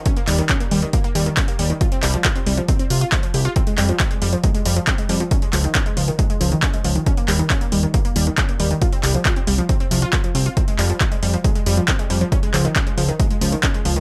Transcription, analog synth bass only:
\new Staff \with { instrumentName = "Analog synth bass" } { \clef bass \time 4/4 \key f \minor \tempo 4 = 137 r8 ees,8 r8 ees,8 r8 ees,8 r8 ees,8 | r8 c,8 r8 c,8 r8 c,8 r8 c,8 | r8 f,8 r8 f,8 r8 f,8 r8 f,8 | r8 des,8 r8 des,8 r8 des,8 r8 des,8 |
r8 ees,8 r8 ees,8 r8 ees,8 r8 ees,8 | r8 c,8 r8 c,8 r8 c,8 r8 c,8 | r8 f,8 r8 f,8 r8 f,8 r8 f,8 | r8 des,8 r8 des,8 r8 des,8 r8 des,8 | }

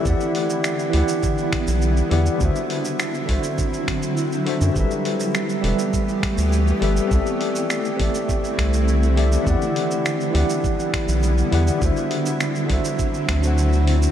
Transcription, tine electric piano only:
\new Staff \with { instrumentName = "Tine electric piano" } { \time 4/4 \key e \minor \tempo 4 = 102 <e e' g' d'' fis''>4. <e e' g' d'' fis''>2 <e e' g' d'' fis''>8 | <d d' fis' c'' e''>4. <d d' fis' c'' e''>2 <d d' fis' c'' e''>8 | <g g' a' b' e''>4. <g g' a' b' e''>2 <g g' a' b' e''>8 | <c' g' a' d'' e''>4. <c' g' a' d'' e''>2 <c' g' a' d'' e''>8 |
<e e' g' d'' fis''>4. <e e' g' d'' fis''>2 <e e' g' d'' fis''>8 | <d d' fis' c'' e''>4. <d d' fis' c'' e''>4~ <d d' fis' c'' e''>16 <d d' fis' c'' fis''>4~ <d d' fis' c'' fis''>16 | }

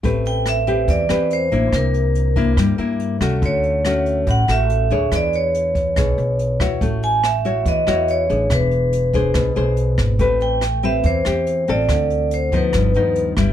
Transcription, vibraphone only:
\new Staff \with { instrumentName = "Vibraphone" } { \time 4/4 \key a \minor \tempo 4 = 142 r8 g''8 e''4 d''4 c''4 | bes'2 r2 | cis''2 fis''8 e''4. | d''8 cis''2. r8 |
r8 gis''8 e''4 dis''4 cis''4 | b'2 r2 | r8 g''4 e''8 c''4. d''8~ | d''4 c''8 b'4. r4 | }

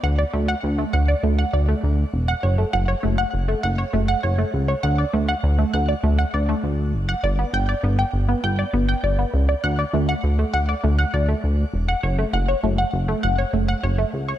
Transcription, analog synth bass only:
\new Staff \with { instrumentName = "Analog synth bass" } { \clef bass \time 4/4 \key d \major \tempo 4 = 100 d,8 d,8 d,8 d,8 d,8 d,8 d,8 e,,8 | fis,,8 fis,,8 fis,,8 fis,,8 fis,,8 fis,,8 fis,,8 cis,8 | d,8 d,8 d,8 d,8 d,8 d,8 d,8 fis,,8 | g,,8 g,,8 g,,8 g,,8 g,,8 g,,8 g,,8 cis,8 |
d,8 d,8 d,8 d,8 d,8 d,8 d,8 e,,8 | fis,,8 fis,,8 fis,,8 fis,,8 fis,,8 fis,,8 fis,,8 cis,8 | }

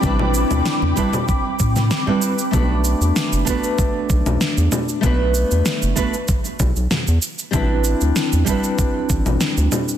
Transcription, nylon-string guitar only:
\new Staff \with { instrumentName = "Nylon-string guitar" } { \time 4/4 \key b \phrygian \tempo 4 = 96 <g c' d' e' b'>4. <g c' d' e' b'>16 r4. <g c' d' e' b'>8 r16 | <a b d' fis' b'>4. <a b d' fis' b'>2~ <a b d' fis' b'>8 | <a b d' fis' b'>4. <a b d' fis' b'>16 r2 r16 | <g c' d' e' b'>4. <g c' d' e' b'>2~ <g c' d' e' b'>8 | }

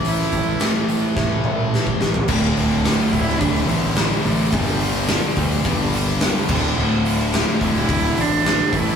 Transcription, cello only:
\new Staff \with { instrumentName = "Cello" } { \time 4/4 \key a \dorian \tempo 4 = 107 e'4 a4. r4. | a8 a8 a8 e'8 d'8 b4 a8 | g4. r2 r8 | a8 a4 e'4 d'4 e'8 | }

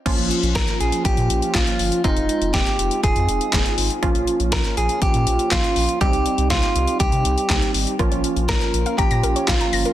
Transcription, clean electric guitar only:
\new Staff \with { instrumentName = "Clean electric guitar" } { \time 4/4 \key bes \dorian \tempo 4 = 121 r4 bes'8 aes'8 g'4 f'4 | ees'4 g'4 aes'4. r8 | r4 bes'8 aes'8 g'4 f'4 | g'4 f'4 g'4. r8 |
r4 bes'4 g'4 f'4 | }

